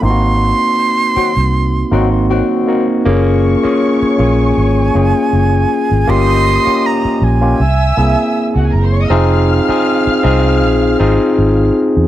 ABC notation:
X:1
M:4/4
L:1/16
Q:"Swing 16ths" 1/4=79
K:Gblyd
V:1 name="Flute"
c'12 z4 | z6 a8- a2 | c'4 b2 a8 z2 | z16 |]
V:2 name="String section"
z16 | [dd']12- [dd']2 z2 | [ee']6 z2 [=e=e']4- [ee']/2 z/2 [Gg]/2 [^G^g]/2 [Bb]/2 [cc']/2 [dd']/2 [^d^d']/2 | [ff']12- [ff']2 z2 |]
V:3 name="Tine electric piano"
[B,CEFG]6 z4 [B,CEG]3 z [B,CEG]2 | [B,DFA]2 z [B,DFA]2 z [B,DFA]3 z [B,DFA]4- [B,DFA] z | [B,DF=G]2 z [B,DFG]3 z [B,DFG] z2 [B,C=E^G]4- [B,CEG] z | [CEFA]2 z [CEFA]2 z [CEFA]3 z [CEFA]4- [CEFA] z |]
V:4 name="Horn section"
z6 [E,G,CG] z3 [E,G,CG] z [E,G,CG]3 z | z16 | z16 | z16 |]
V:5 name="Fingered electric bass" clef=bass
A,,,3 z4 C,,3 A,,,3 z3 | G,,,3 z3 B,,,2 A,,,2 G,,, z G,,,2 z A,,, | =G,,,3 z3 B,,,2 C,,2 C,, z2 D,, _G,,,2 | F,,,3 z3 C,,2 B,,,2 A,,, z A,,,2 z _F,, |]